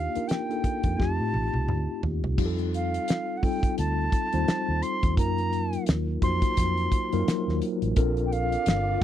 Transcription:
Already playing: tine electric piano A#3 D4 D#4 F4 G4, flute F5
0.15 tine electric piano A#3 D4 D#4 F4 A#4, muted fingered electric bass stroke, closed hi-hat
0.28 flute G5, snare, closed hi-hat
0.49 tine electric piano A#3 D4 D#4 F4 A4, closed hi-hat
0.64 muted fingered electric bass stroke, kick, closed hi-hat
0.83 fingered electric bass F2, kick, closed hi-hat
0.97 fingered electric bass F2, tine electric piano A3 C4 D#4 F4 G4, flute A5, kick, snare
1.20 fingered electric bass A2
1.34 fingered electric bass A1, high tom
1.54 fingered electric bass C2, high tom
1.68 fingered electric bass D2, mid tom
2.03 fingered electric bass D#2, floor tom
2.23 fingered electric bass C2, floor tom
2.38 fingered electric bass F2, tine electric piano G3 C4 D#4 F4 G4, kick, crash
2.46 tine electric piano A4
2.58 closed hi-hat
2.74 flute F5, closed hi-hat
2.94 closed hi-hat
3.08 snare, closed hi-hat
3.37 flute F#5
3.42 tine electric piano G3 C4 D#4 F4 A4, flute G5, kick, open hi-hat
3.63 kick, closed hi-hat
3.78 fingered electric bass D2, flute A5, closed hi-hat
4.12 kick, closed hi-hat
4.33 fingered electric bass D#2, tine electric piano G3 C4 D#4 F4 C5, closed hi-hat
4.48 muted fingered electric bass stroke, snare, closed hi-hat
4.68 fingered electric bass D#2
4.82 flute C6, closed hi-hat
5.03 fingered electric bass D#2, kick, closed hi-hat
5.17 fingered electric bass F#2, tine electric piano F#3 A#3 D#4 F4 A#4, flute A#5, kick, closed hi-hat
5.38 closed hi-hat
5.53 closed hi-hat
5.73 closed hi-hat
5.86 fingered electric bass D#2, snare, closed hi-hat
6.22 fingered electric bass F2, tine electric piano A#3 D#4 F4 F#4 C5, flute C6, kick, closed hi-hat
6.42 kick, closed hi-hat
6.57 fingered electric bass F2, kick, closed hi-hat
6.78 closed hi-hat
6.92 kick, closed hi-hat
7.13 fingered electric bass F#2, tine electric piano F#3 A#3 D#4 F4 A#4, closed hi-hat
7.27 muted fingered electric bass stroke, snare, closed hi-hat
7.48 fingered electric bass D#2, snare
7.62 closed hi-hat
7.82 fingered electric bass A1, closed hi-hat
7.96 fingered electric bass A#1, tine electric piano C4 D4 F4 A4 A#4, string machine F4 D5 F5, kick, closed hi-hat
8.17 closed hi-hat
8.26 flute G5
8.32 flute F5, closed hi-hat
8.52 closed hi-hat
8.66 fingered electric bass G1, snare, closed hi-hat

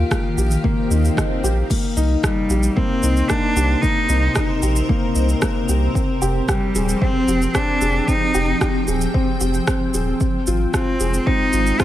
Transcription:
Already playing: ambient pad D#3 D#4 G4 F5, grand piano A#3 F4 G4
0.11 grand piano A#3, kick, cross-stick, shaker
0.37 analog synth bass A#1, grand piano G4, shaker
0.51 shaker
0.64 grand piano A#3, kick, swell
0.91 analog synth bass D#2, grand piano D#4, shaker
1.05 shaker
1.17 grand piano D#5, kick, cross-stick, shaker
1.44 analog synth bass A#1, grand piano G4, shaker
1.70 ambient pad C3, grand piano A#3, kick, crash, shaker
1.92 ambient pad C4
1.97 analog synth bass C2, grand piano D#4, shaker
2.06 ambient pad C5
2.22 cello G3, grand piano D#4, kick, cross-stick, shaker
2.50 analog synth bass A#1, grand piano G4, shaker
2.63 shaker
2.76 grand piano A#3, cello C4, kick
3.03 analog synth bass C2, grand piano D#4, shaker
3.17 ambient pad A#4, shaker
3.28 grand piano A#3, cello D4, kick, cross-stick, shaker
3.56 analog synth bass C2, grand piano G4, shaker
3.81 grand piano A#3, cello D#4, kick, shaker
4.09 analog synth bass C2, grand piano D#4, shaker
4.35 grand piano D#4, kick, cross-stick, shaker
4.62 analog synth bass A#1, grand piano G4, shaker
4.76 shaker
4.89 grand piano A#3, kick
5.15 analog synth bass C2, grand piano D#4, shaker
5.29 shaker
5.42 grand piano A#3, kick, cross-stick, shaker
5.69 analog synth bass C2, grand piano G4, shaker
5.95 ambient pad F3, grand piano C4, kick, shaker
6.22 analog synth bass F1, grand piano G4, shaker
6.48 cello G3, grand piano G4, kick, cross-stick, shaker
6.75 analog synth bass D#1, grand piano G#4, shaker
6.89 shaker
7.02 grand piano C4, cello C4, kick
7.28 analog synth bass F1, grand piano G4, shaker
7.42 shaker
7.55 grand piano C4, cello D4, kick, cross-stick, shaker
7.81 analog synth bass F1, grand piano G#4, shaker
7.86 ambient pad G5
8.08 grand piano C4, cello D#4, kick, shaker
8.34 analog synth bass F1, grand piano G4, shaker
8.61 grand piano G4, kick, cross-stick, shaker
8.88 analog synth bass D#1, grand piano G#4, shaker
9.01 shaker
9.14 grand piano C4, kick
9.40 analog synth bass F1, grand piano G4, shaker
9.54 shaker
9.67 grand piano C4, kick, cross-stick, shaker
9.94 analog synth bass D#1, grand piano G#4, shaker
10.20 ambient pad G#3, grand piano C4, kick, shaker
10.47 analog synth bass G#1, grand piano F4, shaker
10.73 cello C4, grand piano F4, kick, cross-stick, shaker
10.82 ambient pad C5 F5
10.86 ambient pad D#4
11.00 analog synth bass F1, grand piano G#4, shaker
11.14 shaker
11.26 grand piano C4, cello D#4, kick
11.53 analog synth bass G#1, grand piano F4, shaker
11.67 shaker
11.79 grand piano C4, cello F4, kick, cross-stick, shaker

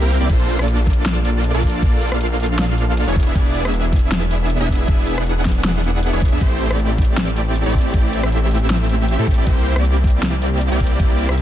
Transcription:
0.02 detuned saw bass C2, supersaw synth A#3 C4 E4 G4 A#4
0.10 closed hi-hat, open hi-hat
0.17 detuned saw bass C2, supersaw synth A#3 C4 E4 G4 D5, closed hi-hat
0.29 detuned saw bass A#1, supersaw synth A#3 D4 F4 A4 C5, kick, closed hi-hat, crash
0.49 closed hi-hat
0.59 detuned saw bass A#1, supersaw synth A#3 D4 F4 A4 D5, cross-stick
0.68 closed hi-hat
0.87 kick, closed hi-hat
0.90 closed hi-hat
0.93 closed hi-hat
1.06 snare, closed hi-hat
1.25 closed hi-hat
1.44 closed hi-hat
1.54 detuned saw bass A#1, supersaw synth A#3 D4 F4 A4 D5
1.63 kick, closed hi-hat
1.67 closed hi-hat
1.70 closed hi-hat
1.82 kick, closed hi-hat
2.02 closed hi-hat
2.12 detuned saw bass A#1, supersaw synth A#3 D4 F4 A4 F5, cross-stick
2.21 closed hi-hat
2.40 closed hi-hat
2.43 closed hi-hat
2.46 closed hi-hat
2.59 snare, closed hi-hat
2.78 closed hi-hat
2.97 closed hi-hat
3.07 detuned saw bass E1, supersaw synth B3 D4 E4 G#4 C#5
3.16 kick, closed hi-hat
3.20 closed hi-hat
3.23 detuned saw bass E1, supersaw synth B3 D4 E4 G#4 E5, closed hi-hat
3.35 detuned saw bass E1, supersaw synth B3 D4 E4 G#4 D5, kick, closed hi-hat
3.55 closed hi-hat
3.65 detuned saw bass E1, supersaw synth B3 D4 E4 G#4 E5, cross-stick
3.74 closed hi-hat
3.93 kick, closed hi-hat
3.96 closed hi-hat
3.99 closed hi-hat
4.12 snare, closed hi-hat
4.31 closed hi-hat
4.50 closed hi-hat
4.60 detuned saw bass E1, supersaw synth B3 D4 E4 G#4 E5
4.69 kick, closed hi-hat
4.72 closed hi-hat
4.75 closed hi-hat
4.88 kick, closed hi-hat
5.07 closed hi-hat
5.18 detuned saw bass E1, supersaw synth B3 D4 E4 G#4 F#5, cross-stick
5.26 closed hi-hat
5.45 kick, snare, closed hi-hat
5.49 closed hi-hat
5.52 closed hi-hat
5.65 snare, closed hi-hat
5.84 closed hi-hat
6.03 closed hi-hat
6.13 detuned saw bass E1, supersaw synth B3 D4 E4 G#4 C#5
6.22 kick, closed hi-hat
6.25 closed hi-hat
6.28 closed hi-hat
6.32 detuned saw bass E2, supersaw synth B3 D4 E4 G#4 E5
6.41 detuned saw bass A1, supersaw synth A3 C4 E4 G4 C5, kick, closed hi-hat
6.60 closed hi-hat
6.70 detuned saw bass A1, supersaw synth A3 C4 E4 G4 D5, cross-stick
6.79 closed hi-hat
6.98 kick, closed hi-hat
7.02 closed hi-hat
7.05 closed hi-hat
7.17 snare, closed hi-hat
7.37 closed hi-hat
7.56 closed hi-hat
7.66 detuned saw bass A1, supersaw synth A3 C4 E4 G4 D5
7.75 kick, closed hi-hat
7.78 closed hi-hat
7.81 closed hi-hat
7.94 kick, closed hi-hat
8.13 closed hi-hat
8.23 detuned saw bass A1, supersaw synth A3 C4 E4 G4 E5, cross-stick
8.32 closed hi-hat
8.51 closed hi-hat
8.55 closed hi-hat
8.57 closed hi-hat
8.70 snare, closed hi-hat
8.89 closed hi-hat
9.08 closed hi-hat
9.19 detuned saw bass A2, supersaw synth A3 C4 E4 G4 A4
9.28 kick, closed hi-hat
9.31 closed hi-hat
9.34 supersaw synth A3 C4 E4 G4 D5, closed hi-hat
9.38 detuned saw bass A1
9.47 detuned saw bass C2, supersaw synth A#3 C4 E4 G4 C5, kick, closed hi-hat
9.66 closed hi-hat
9.76 detuned saw bass C2, supersaw synth A#3 C4 E4 G4 D5, cross-stick
9.85 closed hi-hat
10.04 kick, closed hi-hat
10.07 closed hi-hat
10.10 closed hi-hat
10.23 snare, closed hi-hat
10.42 closed hi-hat
10.61 closed hi-hat
10.72 detuned saw bass C2, supersaw synth A#3 C4 E4 G4 D5
10.80 kick, closed hi-hat
10.84 closed hi-hat
10.87 closed hi-hat
11.00 kick, closed hi-hat
11.19 closed hi-hat
11.29 detuned saw bass C2, supersaw synth A#3 C4 E4 G4 E5, cross-stick
11.38 closed hi-hat

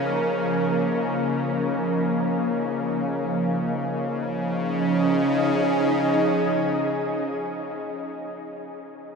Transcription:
Already playing: synth drone C#3 C#4, ambient pad F3 A#3 D#4 A#4 D#5
3.86 synth drone C#3 C#4
3.90 ambient pad F3
4.04 ambient pad C#4
4.17 ambient pad D#4
4.30 ambient pad G#4
4.41 ambient pad D#5

